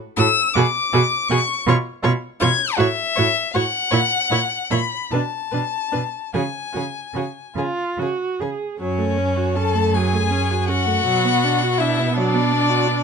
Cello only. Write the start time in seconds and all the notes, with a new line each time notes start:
0.18 A2
0.56 B2
0.93 B2
1.30 B2
1.67 B2
2.04 B2
2.42 B2
2.79 A2
3.18 A2
3.55 A2
3.92 A#2
4.30 A#2
4.71 A#2
5.11 B2
5.53 B2
5.93 B2
6.34 C#3
6.75 C#3
7.14 C#3
7.56 C#3
7.98 C#3
8.40 C#3
8.80 F#2
11.05 B2